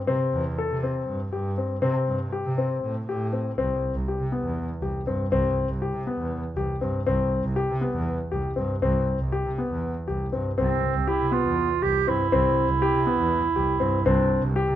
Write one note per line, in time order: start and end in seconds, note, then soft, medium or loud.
0.07 0.19 C3 medium
0.07 0.43 C4 medium
0.33 0.54 E2 medium
0.58 0.76 A4 medium
0.70 1.02 C3 medium
0.83 1.19 C4 medium
1.07 1.28 G2 medium
1.32 1.75 G2 medium
1.32 1.50 G4 medium
1.58 1.76 C4 medium
1.82 1.93 C3 medium
1.82 2.18 C4 medium
2.07 2.28 G2 medium
2.32 2.50 G4 medium
2.45 2.77 C3 medium
2.58 2.93 C4 medium
2.83 3.04 A2 medium
3.09 3.50 A2 medium
3.09 3.26 G4 medium
3.33 3.51 C4 medium
3.58 3.79 C2 medium
3.58 3.93 C4 medium
3.95 4.06 C2 medium
4.08 4.26 G4 medium
4.19 4.40 C3 medium
4.32 4.68 B3 medium
4.44 4.65 E2 medium
4.82 4.93 C2 medium
4.82 5.00 G4 medium
5.06 5.17 G2 medium
5.06 5.25 C4 medium
5.31 5.53 C2 medium
5.31 5.68 C4 medium
5.69 5.80 C2 medium
5.82 6.00 G4 medium
5.93 6.15 C3 medium
6.07 6.43 B3 medium
6.18 6.40 E2 medium
6.56 6.67 C2 medium
6.56 6.75 G4 medium
6.81 6.92 G2 medium
6.81 7.00 C4 medium
7.07 7.28 C2 medium
7.07 7.42 C4 medium
7.44 7.55 C2 medium
7.56 7.74 G4 medium
7.70 7.91 C3 medium
7.81 8.17 B3 medium
7.94 8.15 E2 medium
8.32 8.43 C2 medium
8.32 8.50 G4 medium
8.56 8.68 G2 medium
8.56 8.74 C4 medium
8.82 9.03 C2 medium
8.82 9.18 C4 medium
9.20 9.30 C2 medium
9.32 9.50 G4 medium
9.46 9.66 C3 medium
9.58 9.93 B3 medium
9.71 9.91 E2 medium
10.08 10.18 C2 medium
10.08 10.25 G4 medium
10.33 10.43 G2 medium
10.33 10.50 C4 medium
10.57 10.79 C2 medium
10.57 11.10 C4 medium
10.57 10.93 C4 medium
10.96 11.06 C2 medium
11.07 11.34 E4 medium
11.07 11.25 G4 medium
11.21 11.41 C3 medium
11.32 11.67 B3 medium
11.32 11.84 F4 medium
11.46 11.66 E2 medium
11.82 11.93 C2 medium
11.82 12.00 G4 medium
11.82 12.10 G4 medium
12.07 12.18 G2 medium
12.07 12.25 C4 medium
12.07 14.07 E4 medium
12.32 12.53 C2 medium
12.32 12.67 C4 medium
12.68 12.79 C2 medium
12.82 12.99 G4 medium
12.93 13.14 C3 medium
13.06 13.42 B3 medium
13.18 13.39 E2 medium
13.55 13.66 C2 medium
13.55 13.74 G4 medium
13.79 13.90 G2 medium
13.79 13.98 C4 medium
14.05 14.26 C2 medium
14.05 14.41 C4 medium
14.05 14.53 D4 medium
14.42 14.53 C2 medium
14.56 14.73 G4 medium
14.67 14.76 C3 medium